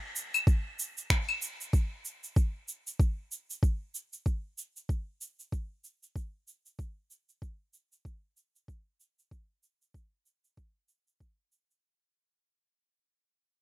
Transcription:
0.16 cabasa
0.34 cabasa, claves
0.47 kick, cabasa
0.79 cabasa
0.98 cabasa
1.10 finger snap, kick, cabasa
1.29 claves
1.42 cabasa
1.61 cabasa
1.73 kick, cabasa
2.05 cabasa
2.24 cabasa
2.36 kick, cabasa
2.68 cabasa
2.87 cabasa
3.00 kick, cabasa
3.32 cabasa
3.50 cabasa
3.63 kick, cabasa
3.95 cabasa
4.13 cabasa
4.26 kick, cabasa
4.58 cabasa
4.77 cabasa
4.89 kick, cabasa
5.21 cabasa
5.40 cabasa
5.52 kick, cabasa
5.84 cabasa
6.03 cabasa
6.16 kick, cabasa
6.48 cabasa
6.66 cabasa
6.79 kick, cabasa
7.11 cabasa
7.29 cabasa
7.42 kick, cabasa
7.73 cabasa
7.92 cabasa
8.05 kick, cabasa
8.37 cabasa
8.56 cabasa
8.68 kick, cabasa
9.00 cabasa
9.19 cabasa
9.31 kick, cabasa
9.63 cabasa
9.82 cabasa
9.94 kick, cabasa
10.26 cabasa
10.44 cabasa
10.57 kick, cabasa
10.88 cabasa
11.07 cabasa
11.20 kick, cabasa
11.52 cabasa
11.71 cabasa

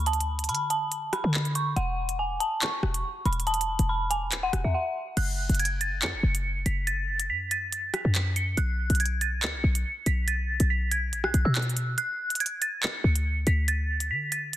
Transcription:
Already playing: D2
0.06 A5, closed hi-hat
0.13 closed hi-hat
0.21 closed hi-hat
0.39 closed hi-hat
0.44 closed hi-hat
0.49 D3 B5, closed hi-hat
0.55 closed hi-hat
0.70 A5, closed hi-hat
0.92 closed hi-hat
1.13 B5, cross-stick, closed hi-hat
1.24 D3
1.34 clap
1.45 closed hi-hat
1.55 C#6, closed hi-hat
1.76 E1 F#5, closed hi-hat
2.09 closed hi-hat
2.19 G#5
2.40 A5, closed hi-hat
2.62 C#6, clap, closed hi-hat
2.83 E1, cross-stick
2.94 closed hi-hat
3.26 E1 B5, closed hi-hat
3.33 closed hi-hat
3.40 closed hi-hat
3.47 A5, closed hi-hat
3.54 closed hi-hat
3.61 closed hi-hat
3.79 E1, closed hi-hat
3.89 B5
4.10 G#5, closed hi-hat
4.32 D1, clap, closed hi-hat
4.43 E1 F#5
4.53 E1, cross-stick, closed hi-hat
4.64 E2 E5
4.74 F#5
5.17 F#1 F#6, closed hi-hat, crash
5.49 F#1, closed hi-hat
5.55 closed hi-hat
5.60 G#6, closed hi-hat
5.65 closed hi-hat
5.81 A6, closed hi-hat
6.02 F#2 C#7, clap, closed hi-hat
6.13 F#1
6.23 F#1
6.35 closed hi-hat
6.66 F#1 B6, closed hi-hat
6.87 A6, closed hi-hat
7.20 closed hi-hat
7.30 F#2 B6
7.51 A6, closed hi-hat
7.72 closed hi-hat
7.94 B6, cross-stick, closed hi-hat
8.05 F#2
8.15 clap, closed hi-hat
8.36 C#7, closed hi-hat
8.57 B1 F#6, closed hi-hat
8.90 B1, closed hi-hat
8.95 closed hi-hat
9.00 G#6, closed hi-hat
9.06 closed hi-hat
9.21 A6, closed hi-hat
9.42 D2 C#7, clap, closed hi-hat
9.54 B1
9.64 B1
9.75 closed hi-hat
10.06 B1 B6, closed hi-hat
10.28 A6, closed hi-hat
10.60 B1, closed hi-hat
10.70 B6
10.91 G#6, closed hi-hat
11.13 A1, closed hi-hat
11.24 B1 F#6, cross-stick
11.34 B1, closed hi-hat
11.45 B2 E6
11.55 F#6, clap, closed hi-hat
11.62 closed hi-hat
11.70 closed hi-hat
11.77 closed hi-hat
11.98 F#6, closed hi-hat
12.30 closed hi-hat
12.35 closed hi-hat
12.40 G#6, closed hi-hat
12.46 closed hi-hat
12.62 A6, closed hi-hat
12.83 C#7, clap, closed hi-hat
13.04 D2
13.16 closed hi-hat
13.47 D2 B6, closed hi-hat
13.68 A6, closed hi-hat
14.00 closed hi-hat
14.11 D3 B6
14.32 A6, closed hi-hat
14.53 closed hi-hat

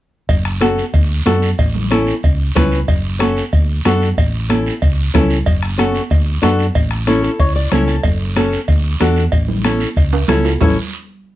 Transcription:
0.29 F#1, bombo low, cowbell, high conga, long guiro
0.45 bombo rim
0.61 C#4 F#4 A4, bombo rim, high conga, short guiro
0.78 short guiro
0.93 D2, bombo low, cowbell, high conga, long guiro
1.26 F#2 D4 F#4 A4, bombo rim, high conga, low timbale, short guiro
1.42 short guiro
1.58 A1, bombo low, cowbell, high conga, long guiro
1.75 low conga
1.91 C#4 E4 A4, bombo rim, high conga, short guiro
2.07 short guiro
2.23 C#2, bombo low, cowbell, high conga, long guiro
2.55 C#2 C#4 E4 B4, bombo low, bombo rim, high conga, low conga, low timbale, short guiro
2.71 short guiro
2.88 F#1, bombo low, cowbell, high conga, long guiro
3.19 C#4 F#4 A4, bombo rim, high conga, short guiro
3.37 short guiro
3.53 D2, bombo low, cowbell, high conga, long guiro
3.85 F#2 D4 F#4 A4, bombo rim, high conga, low timbale, short guiro
4.02 short guiro
4.18 A1, bombo low, cowbell, high conga, long guiro
4.49 C#4 E4 A4, bombo rim, high conga, short guiro
4.66 short guiro
4.82 C#2, bombo low, cowbell, high conga, long guiro
5.14 C#2 C#4 E4 A4, bombo low, bombo rim, high conga, low conga, low timbale, short guiro
5.30 short guiro
5.46 F#1, bombo low, cowbell, high conga, long guiro
5.63 bombo rim
5.78 C#4 F#4 A4, bombo rim, high conga, short guiro
5.94 short guiro
6.10 D2, bombo low, cowbell, high conga, long guiro
6.42 F#2 D4 F#4 A4, bombo rim, high conga, low timbale, short guiro
6.59 short guiro
6.75 A1, bombo low, cowbell, high conga, long guiro
6.91 bombo rim
7.07 C#4 E4 A4, bombo rim, high conga, short guiro
7.23 A4, short guiro
7.40 C#2 C#5, bombo low, cowbell, high conga, long guiro
7.56 D5
7.72 C#2 C#4 E4 A4 E5, bombo rim, high conga, low conga, short guiro
7.88 A5, short guiro
8.03 F#1, bombo low, cowbell, high conga, long guiro
8.36 C#4 F#4 A4, bombo rim, high conga, short guiro
8.52 short guiro
8.68 D2, bombo low, cowbell, high conga, long guiro
9.00 E2 D4 F#4 A4, bombo rim, high conga, low timbale, short guiro
9.16 short guiro
9.32 A1, bombo low, cowbell, high conga, long guiro
9.48 low conga
9.64 C#4 E4 A4, bombo rim, high conga, short guiro
9.80 short guiro
9.96 C#2, bombo low, cowbell, high conga, long guiro
10.13 high timbale
10.28 C#2 C#4 E4 A4, bombo rim, high conga, low conga, low timbale, short guiro
10.45 low timbale, short guiro
10.61 A1 C#4 E4 A4, bombo low, low conga, low timbale, long guiro

